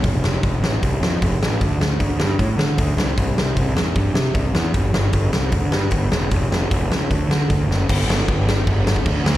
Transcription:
<<
  \new Staff \with { instrumentName = "Picked electric bass" } { \clef bass \time 4/4 \key c \lydian \tempo 4 = 153 f,,8 f,,8 f,,8 a,,8 c,8 f,8 f,,8 a,,8 | d,8 d,8 d,8 g,8 a,8 d8 d,8 c,8 | c,8 c,8 c,8 e,8 g,8 c8 c,8 e,8 | g,,8 g,,8 g,,8 c,8 d,8 g,8 g,,8 e,,8 |
eis,,8 eis,,8 eis,,8 cis,8 d,8 d8 d,8 fis,,8 | \key g \lydian g,,8 g,,8 g,,8 g,,8 g,,4 d,8 d,8 | }
  \new DrumStaff \with { instrumentName = "Drums" } \drummode { \time 4/4 <hho bd>8 sn8 <hho bd>8 sn8 <hho bd>8 sn8 <hho bd>8 sn8 | <hho bd>8 sn8 <hho bd>8 sn8 <hho bd>8 sn8 <hho bd>8 sn8 | <hho bd>8 sn8 <hho bd>8 sn8 <hho bd>8 sn8 <hho bd>8 sn8 | <hho bd>8 sn8 <hho bd>8 sn8 <hho bd>8 sn8 <hho bd>8 sn8 |
<hho bd>8 sn8 <hho bd>8 sn8 <hho bd>8 sn8 <hho bd>8 sn8 | <cymc bd>8 sn8 <cymc bd>8 sn8 <cymc bd>8 sn16 bd16 <cymc bd>8 sn8 | }
>>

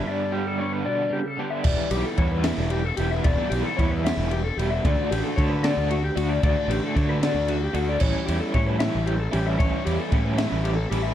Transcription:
<<
  \new Staff \with { instrumentName = "Clean electric guitar" } { \time 6/8 \key e \dorian \tempo 4. = 75 d''8 g'16 a'16 cis''16 b'16 d''8 g'16 a'16 g'16 e''16 | d''8 g'16 a'16 cis''16 b'16 e''8 g'16 a'16 g'16 e''16 | d''8 g'16 a'16 cis''16 b'16 e''8 g'16 a'16 g'16 e''16 | d''8 g'16 a'16 cis''16 b'16 d''8 fis'16 g'16 fis'16 d''16 |
d''8 g'16 a'16 cis''16 b'16 d''8 fis'16 g'16 fis'16 d''16 | cis''8 g'16 a'16 cis''16 b'16 e''8 g'16 a'16 g'16 e''16 | cis''8 g'16 a'16 cis''16 b'16 e''8 g'16 a'16 g'16 e''16 | }
  \new Staff \with { instrumentName = "Overdriven electric guitar" } { \time 6/8 \key e \dorian <d g b d'>8 <d g b d'>8 <d g b d'>8 <d g b d'>8 r8 <d g b d'>8 | <e g b e'>8 <e g b e'>8 <e g b e'>8 <e g b e'>8 r8 <e g b e'>8 | <e g b e'>8 <e g b e'>8 <e g b e'>8 <e g b e'>8 r8 <e g b e'>8 | <d a d' fis'>8 <d a d' fis'>8 <d a d' fis'>8 <d a d' fis'>8 r8 <d a d' fis'>8 |
<d a d' fis'>8 <d a d' fis'>8 <d a d' fis'>8 <d a d' fis'>8 r8 <d a d' fis'>8 | <e g cis' e'>8 <e g cis' e'>8 <e g cis' e'>8 <e g cis' e'>8 r8 <e g cis' e'>8 | <e g cis' e'>8 <e g cis' e'>8 <e g cis' e'>8 <e g cis' e'>8 r8 <e g cis' e'>8 | }
  \new Staff \with { instrumentName = "Clean electric guitar" } { \clef bass \time 6/8 \key e \dorian <g, g>8 g4 b,8 cis8 d8 | r2. | r2. | r2. |
r2. | r2. | r2. | }
  \new Staff \with { instrumentName = "Picked electric bass" } { \clef bass \time 6/8 \key e \dorian r2. | e,,16 r16 b,,16 r16 e,8. e,,8. e,,8 | e,,16 r16 b,,16 r16 e,8. e,,8. e,,8 | d,16 r16 a,,16 r16 d8. d,8. d,8 |
d,16 r16 a,,16 r16 d8. d,8. d,8 | a,,16 r16 e,16 r16 a,8. a,,8. a,,8 | a,,16 r16 e,16 r16 a,8. a,,8. a,,8 | }
  \new DrumStaff \with { instrumentName = "Drums" } \drummode { \time 6/8 r4. r4. | <cymc bd>8 cymr8 <bd cymr>8 <cymr sn>8 cymr8 cymr8 | <bd cymr>8 cymr8 <bd cymr>8 <cymr sn>8 cymr8 cymr8 | <bd cymr>8 cymr8 <bd cymr>8 <cymr sn>8 cymr8 cymr8 |
<bd cymr>8 cymr8 <bd cymr>8 <cymr sn>8 cymr8 cymr8 | <cymc bd>8 cymr8 <bd cymr>8 <cymr sn>8 cymr8 cymr8 | <bd cymr>8 cymr8 <bd cymr>8 <cymr sn>8 cymr8 cymr8 | }
>>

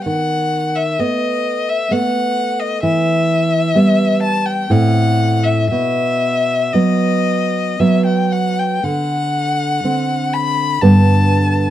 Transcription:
<<
  \new Staff \with { instrumentName = "Violin" } { \time 3/4 \key b \phrygian \tempo 4 = 62 fis''8. e''16 dis''8. e''16 fis''8. dis''16 | e''4. a''16 g''16 fis''8. e''16 | e''4 dis''4 e''16 g''16 fis''16 g''16 | fis''4. b''8 a''4 | }
  \new Staff \with { instrumentName = "Nylon-string guitar" } { \clef bass \time 3/4 \key b \phrygian dis4 <a b>4 <a b>4 | e4 <g b>4 <a, a c'>4 | b,4 <fis b>4 <fis b>4 | d4 <d c'>4 <g, d b>4 | }
>>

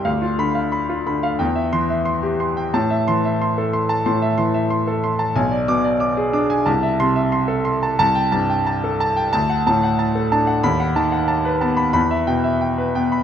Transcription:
<<
  \new Staff \with { instrumentName = "Grand piano" } { \time 4/4 \key a \minor \tempo 4 = 91 << { r8 b''8 r4. c'''8 r4 | r8 c'''8 r2. | r8 d'''8 r4. c'''8 r4 | \key a \dorian a''8 r4. a''8 r4. |
b''8 r4. b''8 r4. | } \\ { f''16 f'8 f''16 b''16 f'16 b''16 f''16 g''16 e''8 e''16 c'''16 g'16 c'''16 g''16 | a''16 e''8 e''16 c'''16 a'16 c'''16 a''16 c'''16 e''16 c'''16 e''16 c'''16 a'16 c'''16 a''16 | gis''16 d''8 d''16 d'''16 gis'16 d'''16 gis''16 a''16 e''8 e''16 c'''16 a'16 c'''16 a''16 | r16 g''16 a''16 g''16 a''16 a'16 a''16 g''16 r16 fis''16 a''16 fis''16 a''16 a'16 a''16 fis''16 |
r16 fis''16 a''16 fis''16 a''16 b'16 a''16 b''16 r16 e''16 g''16 e''16 g''16 b'16 g''16 b''16 | } >> }
  \new Staff \with { instrumentName = "Grand piano" } { \clef bass \time 4/4 \key a \minor d,8 d4 d8 e,8 e4 r8 | a,8 e4 r8 a,8 e4 r8 | b,,8 b,4 d'8 c,8 c4 r8 | \key a \dorian c,8 g,4 r8 d,8 a,4 d'8 |
dis,8 dis4 b8 e,8 b,4 b8 | }
>>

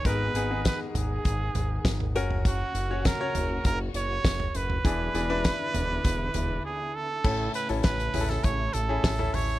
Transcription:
<<
  \new Staff \with { instrumentName = "Trumpet" } { \time 4/4 \key e \lydian \tempo 4 = 100 b'4 b'8 gis'2 r8 | fis'4 ais'4 ais'8 cis''4 b'8~ | b'2. gis'8 a'8~ | \key a \lydian a'8 b'8 b'8. a'16 cis''8 a'4 cis''8 | }
  \new Staff \with { instrumentName = "Grand piano" } { \time 4/4 \key e \lydian <b dis' ais'>8 <b dis' gis'>16 <b dis' gis'>4.~ <b dis' gis'>16 r4 <cis' fis' ais'>8~ | <cis' fis' ais'>8. <cis' fis' cis''>8 <cis' fis' cis''>4.~ <cis' fis' cis''>16 r4 | <d' e' gis'>8 <d' e' gis'>16 <d' e' b'>4.~ <d' e' b'>16 r4. | \key a \lydian <cis' e' a'>8. <cis' e' a'>8. <cis' e' gis' a'>4~ <cis' e' gis' a'>16 <cis' e' gis'>8 <cis' e' a'>8. | }
  \new Staff \with { instrumentName = "Grand piano" } { \clef bass \time 4/4 \key e \lydian gis,4. r2 r8 | r1 | e4. r2 r8 | \key a \lydian a,4. r2 r8 | }
  \new Staff \with { instrumentName = "String section" } { \time 4/4 \key e \lydian <dis b gis'>2.~ <dis b gis'>8 <ais, cis fis'>8~ | <ais, cis fis'>1 | <d b e'>1 | \key a \lydian <cis a e'>1 | }
  \new Staff \with { instrumentName = "Analog synth bass" } { \clef bass \time 4/4 \key e \lydian gis,,8 gis,,8. r16 gis,,8 gis,,8 gis,,8 gis,,8 fis,,8~ | fis,,8 fis,,8. r16 fis,,8 fis,,8 fis,,8 fis,,8 fis,,8 | e,,8 e,,8. r16 e,,8 e,,8 e,,8 r4 | \key a \lydian a,,8 r16 a,,16 a,,8 a,,8 a,,8 a,,8 a,,8 a,,8 | }
  \new DrumStaff \with { instrumentName = "Drums" } \drummode { \time 4/4 <hh bd>8 hh8 <hh bd sn>8 <hh tomfh>8 <hh bd>8 <hh tomfh>8 <hh bd sn>16 tomfh16 hh16 tomfh16 | <hh bd>8 hh8 <hh bd sn>8 <hh tomfh>8 <hh bd>8 hh8 <hh bd sn>16 tomfh16 hh16 tomfh16 | <hh bd>8 hh8 <hh bd sn>8 <hh tomfh>8 <hh bd>8 <hh tomfh>8 r4 | <cymc bd>8 <hho hhp>16 hho16 <hho hhp bd sn>16 hhp16 <hho hhp tomfh>16 sn16 <hho hhp bd>8 <hho hhp>8 <hho hhp bd sn>16 tomfh16 <hho hhp tomfh>16 hho16 | }
>>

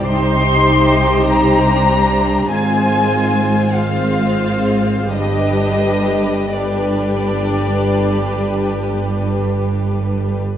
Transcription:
<<
  \new Staff \with { instrumentName = "Violin section" } { \time 12/8 \key g \phrygian \tempo 4. = 45 c'''4. bes''4. aes''4. f''4. | ees''4. d''2. r4. | }
  \new Staff \with { instrumentName = "Violin section" } { \time 12/8 \key g \phrygian <g' c''>2. <f' c''>4. <f' c''>4. | <g' b'>4. <g' b'>1~ <g' b'>16 r16 | }
  \new Staff \with { instrumentName = "Viola section" } { \time 12/8 \key g \phrygian << { ees'2 d'4 c'4. c'4. | d'4. d'1~ d'16 r16 | } \\ { g2. aes4. aes4. | g4. g1~ g16 r16 | } >> }
  \new Staff \with { instrumentName = "Cello section" } { \clef bass \time 12/8 \key g \phrygian c2. aes,2. | g,1~ g,4.~ g,16 r16 | }
  \new Staff \with { instrumentName = "Double bass section" } { \clef bass \time 12/8 \key g \phrygian c,2. aes,,2. | g,,1~ g,,4.~ g,,16 r16 | }
>>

